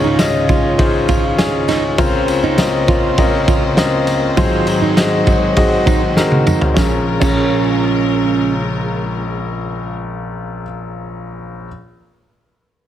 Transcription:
Already playing: grand piano C#2 G#2 C#4 D#4 F4 G#4 C#5, string section D#3 G#3 C#4 F4
0.04 steel-string acoustic guitar D#4
0.19 grand piano C#4 D#4 F4 G#4 D#5, snare, ride, tambourine
0.49 steel-string acoustic guitar F4, kick, ride, tambourine
0.78 grand piano C#4 D#4 F4 G#4 C5, kick, ride
1.08 steel-string acoustic guitar F4, grand piano C#5, kick, ride, tambourine
1.24 grand piano F5
1.38 grand piano C#4 D#4 F4 G#4 C#5 G#5, snare, ride, tambourine
1.68 steel-string acoustic guitar D#4, grand piano C#6, snare, ride, tambourine
1.98 grand piano C#2 C#3 C4 C#4 F4 A#4 C5, string section C#3 A#3 F4 C5, steel-string acoustic guitar F4, kick, ride, tambourine
2.28 ride, tambourine
2.44 steel-string acoustic guitar D#4
2.58 grand piano C4 C#4 F4 A#4 D#5, snare, ride, tambourine
2.88 steel-string acoustic guitar F4, kick, ride, tambourine
3.18 grand piano C4 C#4 F4 A#4 D#5, kick, ride, tambourine
3.48 steel-string acoustic guitar F4, kick, ride, tambourine
3.77 grand piano C4 C#4 F4 A#4 D#5, snare, ride, tambourine
4.07 ride, tambourine
4.37 grand piano G#2 D#3 F#3 C4 D#4 G#4 C5, string section D#3 F#3 G#3, steel-string acoustic guitar F4, kick, ride, tambourine
4.67 ride, tambourine
4.82 steel-string acoustic guitar D#4
4.97 grand piano C4 D#4 F#4 G#4 D#5, snare, ride, tambourine
5.26 steel-string acoustic guitar F#4, kick, ride, tambourine
5.56 grand piano C4 D#4 F#4 G#4 D#5, kick, ride, tambourine
5.86 steel-string acoustic guitar D#4, kick, ride, tambourine
6.17 grand piano C4 D#4 F#4 G#4 A#4, snare, tambourine
6.32 high tom
6.46 steel-string acoustic guitar D#4, mid tom, tambourine
6.61 floor tom
6.74 grand piano A#1 C#4 F4 G#4, string section C#3 G#3 F4 A#4, steel-string acoustic guitar C#4, kick, snare, tambourine
6.78 grand piano A#4
7.20 grand piano A#1 C#4 F4 G#4, steel-string acoustic guitar C#4, kick, crash, tambourine
7.24 grand piano A#4

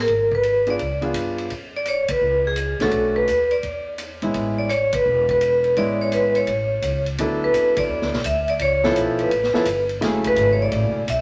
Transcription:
0.01 vibraphone A#4
0.08 upright bass G#1, kick, ride
0.32 vibraphone B4, kick
0.43 hi-hat pedal, ride
0.67 upright piano B3 D4 F4 G#4, vibraphone D5, ride
0.79 upright bass C#2, kick, ride
1.01 upright piano B3 D4 F4 G#4, ride
1.14 upright bass G2, hi-hat pedal, ride
1.38 ride
1.50 upright bass F#2, kick, ride
1.76 vibraphone D5
1.85 vibraphone C#5, hi-hat pedal, ride
2.08 vibraphone B4, muted upright bass stroke, kick, ride
2.21 upright bass C#2
2.47 vibraphone G#4
2.56 hi-hat pedal, ride
2.79 upright bass C2, upright piano A3 C#4 D4 F#4, vibraphone A4, snare, ride
2.91 upright bass B1, kick, ride
3.16 vibraphone B4
3.27 upright bass D#2, hi-hat pedal, ride
3.51 vibraphone D5, ride
3.63 upright bass E2, kick, ride
3.98 hi-hat pedal, ride
4.22 upright bass A#1, upright piano G#3 B3 C#4 E4, ride
4.34 upright bass A1, kick, ride
4.58 vibraphone D5
4.70 vibraphone C#5, hi-hat pedal, ride
4.93 upright bass G#1, vibraphone B4, kick, ride
5.06 upright bass E1
5.29 vibraphone B4, kick, ride
5.41 hi-hat pedal, ride
5.64 ride
5.76 upright bass A1, upright piano G#3 B3 C#4 E4, vibraphone D5, kick, ride
6.01 vibraphone C#5
6.12 vibraphone B4, hi-hat pedal, ride
6.35 vibraphone C#5, ride
6.47 upright bass A1, kick, ride
6.82 upright bass C#2, hi-hat pedal, ride
7.06 ride
7.18 upright bass D2, upright piano F#3 B3 D4 E4 A4, kick, ride
7.44 vibraphone B4
7.54 upright bass F#2, kick, hi-hat pedal, ride
7.76 vibraphone D5, kick, ride
7.89 upright bass E2
8.01 upright bass D2, snare
8.12 upright bass B1, snare
8.24 upright bass D2, vibraphone E5, kick, hi-hat pedal, ride
8.48 vibraphone D5, ride
8.59 upright bass C#2, vibraphone C#5, kick, ride
8.84 upright piano F3 B3 C#4 E4 A4, snare
8.96 upright bass B1, kick, hi-hat pedal, ride
9.19 vibraphone B4, ride
9.31 upright bass A1, kick, ride
9.43 snare
9.53 upright piano F3 B3 C#4 E4 A4, muted upright bass stroke, snare
9.65 upright bass G1, kick, hi-hat pedal, ride
9.89 ride
10.01 upright bass F#1, upright piano C#3 F#3 A3 E4 G#4, kick, snare, ride
10.24 vibraphone B4, kick, ride
10.36 upright bass G#1, kick, hi-hat pedal, ride
10.53 vibraphone C#5
10.62 vibraphone D5
10.72 upright bass A1, kick, ride
10.84 upright bass F#1
10.96 upright bass E1
11.07 upright bass B1, vibraphone E5, kick, hi-hat pedal, ride

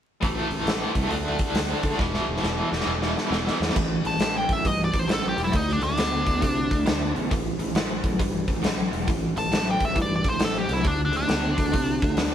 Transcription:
0.21 fingered electric bass A1, overdriven electric guitar A2 E3 A3, kick, open hi-hat
0.50 fingered electric bass A1, open hi-hat
0.66 fingered electric bass A1, snare, open hi-hat
0.94 fingered electric bass C2, overdriven electric guitar A2 E3 A3, kick, open hi-hat
1.08 fingered electric bass D2, overdriven electric guitar D3 A3 D4, open hi-hat
1.39 kick, open hi-hat
1.54 fingered electric bass D2, snare, open hi-hat
1.82 fingered electric bass D3, overdriven electric guitar D3 A3 D4, kick, open hi-hat
1.97 fingered electric bass E1, overdriven electric guitar E2 B2 E3, kick, snare
2.14 snare
2.29 fingered electric bass E1
2.37 snare
2.43 fingered electric bass E1, snare
2.71 fingered electric bass E1, overdriven electric guitar E2 B2 E3, snare
2.80 snare
2.86 fingered electric bass E1
3.02 snare
3.18 snare
3.30 fingered electric bass E1, overdriven electric guitar E2 B2 E3, snare
3.47 snare
3.60 fingered electric bass E2, snare
3.69 snare
3.75 fingered electric bass A1, overdriven electric guitar A2 E3, kick, crash
4.04 fingered electric bass A1, overdriven electric guitar A2 E3, lead electric guitar A5, open hi-hat
4.20 fingered electric bass A1, overdriven electric guitar A2 F#3, snare, open hi-hat
4.37 lead electric guitar G5
4.49 fingered electric bass A1, overdriven electric guitar A2 F#3, lead electric guitar E5, kick, open hi-hat
4.65 fingered electric bass G2, overdriven electric guitar A2 E3, lead electric guitar D#5, kick, open hi-hat
4.84 lead electric guitar D5
4.93 fingered electric bass A1, overdriven electric guitar A2 E3, kick, open hi-hat
4.99 lead electric guitar C5
5.07 fingered electric bass A1, overdriven electric guitar A2 F#3, snare, open hi-hat
5.13 lead electric guitar A4
5.29 lead electric guitar G4
5.36 fingered electric bass E1, overdriven electric guitar A2 F#3, open hi-hat
5.44 lead electric guitar E4
5.52 fingered electric bass D2, overdriven electric guitar D3 A3, kick, open hi-hat
5.56 lead electric guitar D#4
5.69 lead electric guitar D4, snare
5.82 fingered electric bass D2, overdriven electric guitar D3 A3, lead electric guitar D4, open hi-hat
5.97 fingered electric bass D2, overdriven electric guitar D3 B3, snare, open hi-hat
6.25 fingered electric bass D2, overdriven electric guitar D3 B3, kick, open hi-hat
6.41 fingered electric bass C3, overdriven electric guitar D3 A3, kick, open hi-hat
6.70 fingered electric bass D2, overdriven electric guitar D3 A3, kick, open hi-hat
6.86 fingered electric bass D2, overdriven electric guitar D3 B3, snare, open hi-hat
7.15 fingered electric bass A1, overdriven electric guitar D3 B3, open hi-hat
7.30 fingered electric bass A1, overdriven electric guitar A2 E3, kick, open hi-hat
7.59 fingered electric bass A1, overdriven electric guitar A2 E3, open hi-hat
7.75 fingered electric bass A1, overdriven electric guitar A2 F#3, snare, open hi-hat
8.04 fingered electric bass A1, overdriven electric guitar A2 F#3, kick, open hi-hat
8.19 fingered electric bass G2, overdriven electric guitar A2 E3, kick, open hi-hat
8.48 fingered electric bass A1, overdriven electric guitar A2 E3, kick, open hi-hat
8.63 fingered electric bass A1, overdriven electric guitar A2 F#3, snare, open hi-hat
8.92 fingered electric bass E1, overdriven electric guitar A2 F#3, open hi-hat
9.08 fingered electric bass A1, overdriven electric guitar A2 E3, kick, open hi-hat
9.36 fingered electric bass A1, overdriven electric guitar A2 E3, lead electric guitar A5, open hi-hat
9.51 fingered electric bass A1, overdriven electric guitar A2 F#3, snare, open hi-hat
9.71 lead electric guitar G5
9.79 fingered electric bass A1, overdriven electric guitar A2 F#3, kick, open hi-hat
9.85 lead electric guitar E5
9.96 fingered electric bass G2, overdriven electric guitar A2 E3, kick, open hi-hat
10.02 lead electric guitar D5
10.16 lead electric guitar D5
10.24 fingered electric bass A1, overdriven electric guitar A2 E3, kick, open hi-hat
10.29 lead electric guitar C5
10.39 fingered electric bass A1, overdriven electric guitar A2 F#3, snare, open hi-hat
10.45 lead electric guitar A4
10.58 lead electric guitar G4
10.68 fingered electric bass C2, overdriven electric guitar A2 F#3, open hi-hat
10.73 lead electric guitar E4
10.83 fingered electric bass D2, overdriven electric guitar D3 A3, kick, open hi-hat
10.88 lead electric guitar D4
11.05 lead electric guitar D4
11.11 fingered electric bass D2, overdriven electric guitar D3 A3, open hi-hat
11.17 lead electric guitar D4
11.28 fingered electric bass D2, overdriven electric guitar D3 B3, snare, open hi-hat
11.56 fingered electric bass D2, overdriven electric guitar D3 B3, kick, open hi-hat
11.72 fingered electric bass C3, overdriven electric guitar D3 A3, kick, open hi-hat
12.02 fingered electric bass D2, overdriven electric guitar D3 A3, kick, open hi-hat
12.17 fingered electric bass D2, overdriven electric guitar D3 B3, snare, open hi-hat

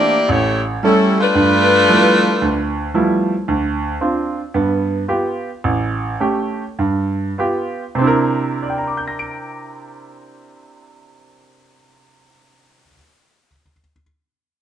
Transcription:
Already playing: grand piano E3 A3 A#3 C4 D4, saxophone section A#3 E4 G4 D5
0.29 grand piano A1, saxophone section A3 E4 G4 C#5
0.83 grand piano G3 A3 C#4, saxophone section G3 C#4 E4 A4
1.21 saxophone section A3 D4 F4 B4
1.35 grand piano G2
1.89 grand piano F3 G3 A3 B3 E4
2.42 grand piano D2
2.94 grand piano F3 G3 A3 B3 E4
3.48 grand piano D2
4.01 grand piano C4 D4 F4
4.54 grand piano G2 B3
5.08 grand piano B3 F4 G4
5.64 grand piano A1
6.20 grand piano A3 C#4 G4
6.79 grand piano G2
7.38 grand piano B3 F4 G4
7.95 grand piano C3 C4
8.01 grand piano D4 E4
8.07 grand piano A#4
8.62 grand piano D5
8.70 grand piano G5
8.78 grand piano A#5
8.87 grand piano D6
8.97 grand piano G6
9.08 grand piano A#6
9.19 grand piano D7

